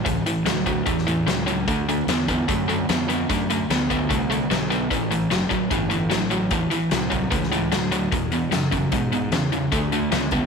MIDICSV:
0, 0, Header, 1, 5, 480
1, 0, Start_track
1, 0, Key_signature, 3, "major"
1, 0, Tempo, 402414
1, 69, Time_signature, 4, 2, 24, 8
1, 12477, End_track
2, 0, Start_track
2, 0, Title_t, "Distorted electric guitar"
2, 0, Program_c, 0, 30
2, 59, Note_on_c, 0, 45, 77
2, 61, Note_on_c, 0, 52, 78
2, 281, Note_off_c, 0, 45, 0
2, 282, Note_off_c, 0, 52, 0
2, 313, Note_on_c, 0, 45, 62
2, 317, Note_on_c, 0, 52, 68
2, 529, Note_off_c, 0, 45, 0
2, 531, Note_off_c, 0, 52, 0
2, 544, Note_on_c, 0, 45, 70
2, 550, Note_on_c, 0, 54, 79
2, 765, Note_off_c, 0, 45, 0
2, 768, Note_off_c, 0, 54, 0
2, 787, Note_on_c, 0, 45, 67
2, 796, Note_on_c, 0, 54, 64
2, 1007, Note_off_c, 0, 45, 0
2, 1011, Note_off_c, 0, 54, 0
2, 1022, Note_on_c, 0, 45, 64
2, 1026, Note_on_c, 0, 52, 74
2, 1245, Note_off_c, 0, 45, 0
2, 1247, Note_off_c, 0, 52, 0
2, 1274, Note_on_c, 0, 52, 78
2, 1275, Note_on_c, 0, 45, 70
2, 1491, Note_off_c, 0, 52, 0
2, 1492, Note_off_c, 0, 45, 0
2, 1509, Note_on_c, 0, 45, 74
2, 1517, Note_on_c, 0, 54, 73
2, 1729, Note_off_c, 0, 45, 0
2, 1733, Note_off_c, 0, 54, 0
2, 1744, Note_on_c, 0, 45, 64
2, 1751, Note_on_c, 0, 54, 77
2, 1968, Note_off_c, 0, 45, 0
2, 1971, Note_off_c, 0, 54, 0
2, 1999, Note_on_c, 0, 57, 88
2, 2000, Note_on_c, 0, 50, 74
2, 2216, Note_off_c, 0, 50, 0
2, 2216, Note_off_c, 0, 57, 0
2, 2249, Note_on_c, 0, 50, 59
2, 2250, Note_on_c, 0, 57, 69
2, 2461, Note_off_c, 0, 50, 0
2, 2462, Note_off_c, 0, 57, 0
2, 2490, Note_on_c, 0, 50, 68
2, 2499, Note_on_c, 0, 59, 75
2, 2702, Note_off_c, 0, 50, 0
2, 2707, Note_off_c, 0, 59, 0
2, 2724, Note_on_c, 0, 50, 72
2, 2729, Note_on_c, 0, 59, 73
2, 2939, Note_off_c, 0, 50, 0
2, 2942, Note_off_c, 0, 59, 0
2, 2960, Note_on_c, 0, 50, 72
2, 2968, Note_on_c, 0, 57, 77
2, 3178, Note_off_c, 0, 50, 0
2, 3182, Note_off_c, 0, 57, 0
2, 3198, Note_on_c, 0, 50, 69
2, 3209, Note_on_c, 0, 57, 76
2, 3417, Note_off_c, 0, 50, 0
2, 3423, Note_off_c, 0, 57, 0
2, 3452, Note_on_c, 0, 50, 69
2, 3459, Note_on_c, 0, 59, 77
2, 3665, Note_off_c, 0, 50, 0
2, 3668, Note_off_c, 0, 59, 0
2, 3682, Note_on_c, 0, 50, 65
2, 3689, Note_on_c, 0, 59, 76
2, 3900, Note_off_c, 0, 50, 0
2, 3904, Note_off_c, 0, 59, 0
2, 3932, Note_on_c, 0, 50, 68
2, 3939, Note_on_c, 0, 57, 83
2, 4145, Note_off_c, 0, 50, 0
2, 4149, Note_off_c, 0, 57, 0
2, 4172, Note_on_c, 0, 50, 61
2, 4184, Note_on_c, 0, 57, 69
2, 4386, Note_off_c, 0, 50, 0
2, 4391, Note_off_c, 0, 57, 0
2, 4416, Note_on_c, 0, 50, 76
2, 4423, Note_on_c, 0, 59, 83
2, 4628, Note_off_c, 0, 50, 0
2, 4632, Note_off_c, 0, 59, 0
2, 4651, Note_on_c, 0, 50, 70
2, 4659, Note_on_c, 0, 59, 76
2, 4866, Note_off_c, 0, 50, 0
2, 4870, Note_off_c, 0, 59, 0
2, 4880, Note_on_c, 0, 50, 65
2, 4889, Note_on_c, 0, 57, 77
2, 5101, Note_off_c, 0, 50, 0
2, 5105, Note_off_c, 0, 57, 0
2, 5127, Note_on_c, 0, 50, 67
2, 5136, Note_on_c, 0, 57, 81
2, 5344, Note_off_c, 0, 50, 0
2, 5349, Note_off_c, 0, 57, 0
2, 5370, Note_on_c, 0, 50, 81
2, 5378, Note_on_c, 0, 59, 76
2, 5586, Note_off_c, 0, 50, 0
2, 5589, Note_off_c, 0, 59, 0
2, 5611, Note_on_c, 0, 50, 62
2, 5612, Note_on_c, 0, 59, 73
2, 5826, Note_off_c, 0, 50, 0
2, 5827, Note_off_c, 0, 59, 0
2, 5850, Note_on_c, 0, 45, 73
2, 5858, Note_on_c, 0, 52, 86
2, 6066, Note_off_c, 0, 45, 0
2, 6070, Note_off_c, 0, 52, 0
2, 6092, Note_on_c, 0, 45, 61
2, 6093, Note_on_c, 0, 52, 68
2, 6307, Note_off_c, 0, 45, 0
2, 6308, Note_off_c, 0, 52, 0
2, 6327, Note_on_c, 0, 45, 65
2, 6333, Note_on_c, 0, 54, 79
2, 6537, Note_off_c, 0, 45, 0
2, 6548, Note_off_c, 0, 54, 0
2, 6552, Note_on_c, 0, 45, 70
2, 6562, Note_on_c, 0, 54, 77
2, 6777, Note_off_c, 0, 45, 0
2, 6782, Note_off_c, 0, 54, 0
2, 6806, Note_on_c, 0, 45, 70
2, 6817, Note_on_c, 0, 52, 82
2, 7024, Note_off_c, 0, 45, 0
2, 7025, Note_off_c, 0, 52, 0
2, 7036, Note_on_c, 0, 45, 66
2, 7039, Note_on_c, 0, 52, 74
2, 7259, Note_off_c, 0, 45, 0
2, 7261, Note_off_c, 0, 52, 0
2, 7271, Note_on_c, 0, 45, 74
2, 7276, Note_on_c, 0, 54, 77
2, 7496, Note_off_c, 0, 45, 0
2, 7499, Note_off_c, 0, 54, 0
2, 7518, Note_on_c, 0, 45, 66
2, 7527, Note_on_c, 0, 54, 80
2, 7740, Note_off_c, 0, 45, 0
2, 7744, Note_off_c, 0, 54, 0
2, 7763, Note_on_c, 0, 45, 76
2, 7772, Note_on_c, 0, 52, 80
2, 7982, Note_off_c, 0, 45, 0
2, 7987, Note_off_c, 0, 52, 0
2, 7996, Note_on_c, 0, 45, 66
2, 8003, Note_on_c, 0, 52, 75
2, 8218, Note_off_c, 0, 45, 0
2, 8222, Note_off_c, 0, 52, 0
2, 8247, Note_on_c, 0, 45, 73
2, 8248, Note_on_c, 0, 54, 78
2, 8455, Note_off_c, 0, 45, 0
2, 8460, Note_off_c, 0, 54, 0
2, 8470, Note_on_c, 0, 45, 71
2, 8475, Note_on_c, 0, 54, 70
2, 8694, Note_off_c, 0, 45, 0
2, 8697, Note_off_c, 0, 54, 0
2, 8718, Note_on_c, 0, 45, 71
2, 8724, Note_on_c, 0, 52, 77
2, 8938, Note_off_c, 0, 45, 0
2, 8941, Note_off_c, 0, 52, 0
2, 8966, Note_on_c, 0, 45, 69
2, 8973, Note_on_c, 0, 52, 77
2, 9182, Note_off_c, 0, 45, 0
2, 9185, Note_off_c, 0, 52, 0
2, 9204, Note_on_c, 0, 45, 71
2, 9204, Note_on_c, 0, 54, 77
2, 9420, Note_off_c, 0, 45, 0
2, 9421, Note_off_c, 0, 54, 0
2, 9440, Note_on_c, 0, 45, 65
2, 9447, Note_on_c, 0, 54, 73
2, 9658, Note_off_c, 0, 45, 0
2, 9661, Note_off_c, 0, 54, 0
2, 9683, Note_on_c, 0, 40, 65
2, 9688, Note_on_c, 0, 47, 80
2, 9899, Note_off_c, 0, 40, 0
2, 9902, Note_off_c, 0, 47, 0
2, 9921, Note_on_c, 0, 40, 61
2, 9926, Note_on_c, 0, 47, 71
2, 10138, Note_off_c, 0, 40, 0
2, 10140, Note_off_c, 0, 47, 0
2, 10152, Note_on_c, 0, 40, 68
2, 10156, Note_on_c, 0, 49, 77
2, 10373, Note_off_c, 0, 40, 0
2, 10375, Note_off_c, 0, 49, 0
2, 10394, Note_on_c, 0, 40, 69
2, 10403, Note_on_c, 0, 49, 82
2, 10613, Note_off_c, 0, 40, 0
2, 10618, Note_off_c, 0, 49, 0
2, 10639, Note_on_c, 0, 40, 66
2, 10648, Note_on_c, 0, 47, 74
2, 10855, Note_off_c, 0, 40, 0
2, 10860, Note_off_c, 0, 47, 0
2, 10879, Note_on_c, 0, 40, 69
2, 10884, Note_on_c, 0, 47, 72
2, 11095, Note_off_c, 0, 40, 0
2, 11097, Note_off_c, 0, 47, 0
2, 11120, Note_on_c, 0, 40, 77
2, 11126, Note_on_c, 0, 49, 81
2, 11335, Note_off_c, 0, 40, 0
2, 11337, Note_off_c, 0, 49, 0
2, 11357, Note_on_c, 0, 40, 67
2, 11359, Note_on_c, 0, 49, 64
2, 11572, Note_off_c, 0, 40, 0
2, 11574, Note_off_c, 0, 49, 0
2, 11591, Note_on_c, 0, 50, 81
2, 11599, Note_on_c, 0, 57, 82
2, 11809, Note_off_c, 0, 50, 0
2, 11813, Note_off_c, 0, 57, 0
2, 11834, Note_on_c, 0, 50, 60
2, 11839, Note_on_c, 0, 57, 64
2, 12050, Note_off_c, 0, 50, 0
2, 12052, Note_off_c, 0, 57, 0
2, 12066, Note_on_c, 0, 50, 77
2, 12069, Note_on_c, 0, 59, 83
2, 12285, Note_off_c, 0, 50, 0
2, 12287, Note_off_c, 0, 59, 0
2, 12309, Note_on_c, 0, 50, 70
2, 12313, Note_on_c, 0, 59, 74
2, 12477, Note_off_c, 0, 50, 0
2, 12477, Note_off_c, 0, 59, 0
2, 12477, End_track
3, 0, Start_track
3, 0, Title_t, "Fingered electric bass"
3, 0, Program_c, 1, 33
3, 80, Note_on_c, 1, 37, 75
3, 294, Note_off_c, 1, 37, 0
3, 543, Note_on_c, 1, 38, 77
3, 1015, Note_off_c, 1, 38, 0
3, 1040, Note_on_c, 1, 40, 69
3, 1502, Note_off_c, 1, 40, 0
3, 1509, Note_on_c, 1, 37, 87
3, 1980, Note_off_c, 1, 37, 0
3, 2003, Note_on_c, 1, 38, 79
3, 2462, Note_off_c, 1, 38, 0
3, 2470, Note_on_c, 1, 40, 79
3, 2942, Note_off_c, 1, 40, 0
3, 2966, Note_on_c, 1, 42, 74
3, 3431, Note_off_c, 1, 42, 0
3, 3452, Note_on_c, 1, 41, 81
3, 3915, Note_off_c, 1, 41, 0
3, 3934, Note_on_c, 1, 42, 81
3, 4397, Note_off_c, 1, 42, 0
3, 4405, Note_on_c, 1, 38, 76
3, 4872, Note_off_c, 1, 38, 0
3, 4899, Note_on_c, 1, 36, 72
3, 5360, Note_off_c, 1, 36, 0
3, 5376, Note_on_c, 1, 35, 92
3, 5839, Note_off_c, 1, 35, 0
3, 5862, Note_on_c, 1, 33, 80
3, 6322, Note_off_c, 1, 33, 0
3, 6332, Note_on_c, 1, 30, 82
3, 6555, Note_off_c, 1, 30, 0
3, 6811, Note_on_c, 1, 31, 75
3, 7276, Note_off_c, 1, 31, 0
3, 7289, Note_on_c, 1, 33, 86
3, 7755, Note_off_c, 1, 33, 0
3, 7768, Note_on_c, 1, 40, 75
3, 7991, Note_off_c, 1, 40, 0
3, 8255, Note_on_c, 1, 36, 80
3, 8717, Note_off_c, 1, 36, 0
3, 8729, Note_on_c, 1, 37, 77
3, 9193, Note_off_c, 1, 37, 0
3, 9209, Note_on_c, 1, 38, 86
3, 9672, Note_off_c, 1, 38, 0
3, 9689, Note_on_c, 1, 40, 81
3, 10151, Note_off_c, 1, 40, 0
3, 10156, Note_on_c, 1, 42, 74
3, 10623, Note_off_c, 1, 42, 0
3, 10643, Note_on_c, 1, 44, 73
3, 11106, Note_off_c, 1, 44, 0
3, 11113, Note_on_c, 1, 40, 89
3, 11579, Note_off_c, 1, 40, 0
3, 11597, Note_on_c, 1, 38, 78
3, 12056, Note_off_c, 1, 38, 0
3, 12063, Note_on_c, 1, 37, 82
3, 12477, Note_off_c, 1, 37, 0
3, 12477, End_track
4, 0, Start_track
4, 0, Title_t, "Muted fingered electric bass strokes"
4, 301, Note_on_c, 9, 29, 37
4, 421, Note_off_c, 9, 29, 0
4, 6572, Note_on_c, 9, 29, 37
4, 6691, Note_off_c, 9, 29, 0
4, 8019, Note_on_c, 9, 29, 37
4, 8138, Note_off_c, 9, 29, 0
4, 12477, End_track
5, 0, Start_track
5, 0, Title_t, "Drums"
5, 68, Note_on_c, 9, 42, 83
5, 73, Note_on_c, 9, 36, 108
5, 188, Note_off_c, 9, 42, 0
5, 192, Note_off_c, 9, 36, 0
5, 313, Note_on_c, 9, 42, 59
5, 432, Note_off_c, 9, 42, 0
5, 549, Note_on_c, 9, 42, 82
5, 558, Note_on_c, 9, 38, 95
5, 668, Note_off_c, 9, 42, 0
5, 677, Note_off_c, 9, 38, 0
5, 790, Note_on_c, 9, 42, 57
5, 793, Note_on_c, 9, 36, 73
5, 909, Note_off_c, 9, 42, 0
5, 912, Note_off_c, 9, 36, 0
5, 1028, Note_on_c, 9, 42, 75
5, 1034, Note_on_c, 9, 36, 109
5, 1148, Note_off_c, 9, 42, 0
5, 1153, Note_off_c, 9, 36, 0
5, 1171, Note_on_c, 9, 38, 32
5, 1283, Note_on_c, 9, 42, 53
5, 1290, Note_off_c, 9, 38, 0
5, 1402, Note_off_c, 9, 42, 0
5, 1521, Note_on_c, 9, 42, 71
5, 1530, Note_on_c, 9, 38, 94
5, 1640, Note_off_c, 9, 42, 0
5, 1649, Note_off_c, 9, 38, 0
5, 1761, Note_on_c, 9, 42, 56
5, 1880, Note_off_c, 9, 42, 0
5, 2001, Note_on_c, 9, 36, 97
5, 2004, Note_on_c, 9, 42, 72
5, 2120, Note_off_c, 9, 36, 0
5, 2124, Note_off_c, 9, 42, 0
5, 2254, Note_on_c, 9, 42, 54
5, 2373, Note_off_c, 9, 42, 0
5, 2481, Note_on_c, 9, 42, 72
5, 2490, Note_on_c, 9, 38, 103
5, 2600, Note_off_c, 9, 42, 0
5, 2610, Note_off_c, 9, 38, 0
5, 2724, Note_on_c, 9, 36, 75
5, 2724, Note_on_c, 9, 42, 59
5, 2843, Note_off_c, 9, 36, 0
5, 2843, Note_off_c, 9, 42, 0
5, 2964, Note_on_c, 9, 42, 77
5, 2965, Note_on_c, 9, 36, 108
5, 3083, Note_off_c, 9, 42, 0
5, 3085, Note_off_c, 9, 36, 0
5, 3212, Note_on_c, 9, 42, 49
5, 3331, Note_off_c, 9, 42, 0
5, 3446, Note_on_c, 9, 42, 77
5, 3456, Note_on_c, 9, 38, 101
5, 3565, Note_off_c, 9, 42, 0
5, 3575, Note_off_c, 9, 38, 0
5, 3692, Note_on_c, 9, 42, 57
5, 3811, Note_off_c, 9, 42, 0
5, 3932, Note_on_c, 9, 36, 97
5, 3936, Note_on_c, 9, 42, 82
5, 4051, Note_off_c, 9, 36, 0
5, 4055, Note_off_c, 9, 42, 0
5, 4175, Note_on_c, 9, 42, 55
5, 4295, Note_off_c, 9, 42, 0
5, 4417, Note_on_c, 9, 42, 74
5, 4426, Note_on_c, 9, 38, 92
5, 4536, Note_off_c, 9, 42, 0
5, 4546, Note_off_c, 9, 38, 0
5, 4656, Note_on_c, 9, 36, 70
5, 4662, Note_on_c, 9, 42, 63
5, 4776, Note_off_c, 9, 36, 0
5, 4781, Note_off_c, 9, 42, 0
5, 4897, Note_on_c, 9, 36, 105
5, 4900, Note_on_c, 9, 42, 84
5, 5017, Note_off_c, 9, 36, 0
5, 5019, Note_off_c, 9, 42, 0
5, 5146, Note_on_c, 9, 42, 53
5, 5266, Note_off_c, 9, 42, 0
5, 5382, Note_on_c, 9, 42, 77
5, 5391, Note_on_c, 9, 38, 93
5, 5501, Note_off_c, 9, 42, 0
5, 5511, Note_off_c, 9, 38, 0
5, 5625, Note_on_c, 9, 42, 55
5, 5744, Note_off_c, 9, 42, 0
5, 5856, Note_on_c, 9, 36, 98
5, 5862, Note_on_c, 9, 42, 77
5, 5976, Note_off_c, 9, 36, 0
5, 5982, Note_off_c, 9, 42, 0
5, 6101, Note_on_c, 9, 42, 57
5, 6220, Note_off_c, 9, 42, 0
5, 6334, Note_on_c, 9, 42, 70
5, 6344, Note_on_c, 9, 38, 103
5, 6454, Note_off_c, 9, 42, 0
5, 6463, Note_off_c, 9, 38, 0
5, 6573, Note_on_c, 9, 36, 78
5, 6574, Note_on_c, 9, 42, 56
5, 6693, Note_off_c, 9, 36, 0
5, 6693, Note_off_c, 9, 42, 0
5, 6811, Note_on_c, 9, 36, 107
5, 6811, Note_on_c, 9, 42, 77
5, 6930, Note_off_c, 9, 42, 0
5, 6931, Note_off_c, 9, 36, 0
5, 7048, Note_on_c, 9, 42, 52
5, 7167, Note_off_c, 9, 42, 0
5, 7288, Note_on_c, 9, 42, 77
5, 7297, Note_on_c, 9, 38, 101
5, 7407, Note_off_c, 9, 42, 0
5, 7417, Note_off_c, 9, 38, 0
5, 7525, Note_on_c, 9, 42, 57
5, 7644, Note_off_c, 9, 42, 0
5, 7759, Note_on_c, 9, 42, 76
5, 7768, Note_on_c, 9, 36, 101
5, 7878, Note_off_c, 9, 42, 0
5, 7888, Note_off_c, 9, 36, 0
5, 8007, Note_on_c, 9, 42, 55
5, 8126, Note_off_c, 9, 42, 0
5, 8243, Note_on_c, 9, 42, 76
5, 8252, Note_on_c, 9, 38, 97
5, 8362, Note_off_c, 9, 42, 0
5, 8372, Note_off_c, 9, 38, 0
5, 8486, Note_on_c, 9, 42, 61
5, 8489, Note_on_c, 9, 36, 72
5, 8605, Note_off_c, 9, 42, 0
5, 8608, Note_off_c, 9, 36, 0
5, 8725, Note_on_c, 9, 42, 85
5, 8731, Note_on_c, 9, 36, 103
5, 8845, Note_off_c, 9, 42, 0
5, 8850, Note_off_c, 9, 36, 0
5, 8867, Note_on_c, 9, 38, 31
5, 8975, Note_on_c, 9, 42, 53
5, 8986, Note_off_c, 9, 38, 0
5, 9095, Note_off_c, 9, 42, 0
5, 9208, Note_on_c, 9, 42, 80
5, 9218, Note_on_c, 9, 38, 97
5, 9328, Note_off_c, 9, 42, 0
5, 9337, Note_off_c, 9, 38, 0
5, 9445, Note_on_c, 9, 42, 59
5, 9564, Note_off_c, 9, 42, 0
5, 9688, Note_on_c, 9, 42, 71
5, 9689, Note_on_c, 9, 36, 101
5, 9808, Note_off_c, 9, 42, 0
5, 9809, Note_off_c, 9, 36, 0
5, 9920, Note_on_c, 9, 42, 52
5, 10039, Note_off_c, 9, 42, 0
5, 10160, Note_on_c, 9, 42, 74
5, 10169, Note_on_c, 9, 38, 95
5, 10279, Note_off_c, 9, 42, 0
5, 10289, Note_off_c, 9, 38, 0
5, 10401, Note_on_c, 9, 42, 57
5, 10404, Note_on_c, 9, 36, 78
5, 10521, Note_off_c, 9, 42, 0
5, 10523, Note_off_c, 9, 36, 0
5, 10636, Note_on_c, 9, 42, 80
5, 10642, Note_on_c, 9, 36, 101
5, 10755, Note_off_c, 9, 42, 0
5, 10762, Note_off_c, 9, 36, 0
5, 10883, Note_on_c, 9, 42, 48
5, 11002, Note_off_c, 9, 42, 0
5, 11114, Note_on_c, 9, 42, 76
5, 11123, Note_on_c, 9, 38, 98
5, 11233, Note_off_c, 9, 42, 0
5, 11243, Note_off_c, 9, 38, 0
5, 11361, Note_on_c, 9, 42, 52
5, 11480, Note_off_c, 9, 42, 0
5, 11596, Note_on_c, 9, 36, 104
5, 11596, Note_on_c, 9, 42, 76
5, 11715, Note_off_c, 9, 36, 0
5, 11715, Note_off_c, 9, 42, 0
5, 11833, Note_on_c, 9, 42, 52
5, 11953, Note_off_c, 9, 42, 0
5, 12067, Note_on_c, 9, 42, 76
5, 12076, Note_on_c, 9, 38, 98
5, 12186, Note_off_c, 9, 42, 0
5, 12196, Note_off_c, 9, 38, 0
5, 12297, Note_on_c, 9, 42, 61
5, 12307, Note_on_c, 9, 36, 74
5, 12416, Note_off_c, 9, 42, 0
5, 12426, Note_off_c, 9, 36, 0
5, 12477, End_track
0, 0, End_of_file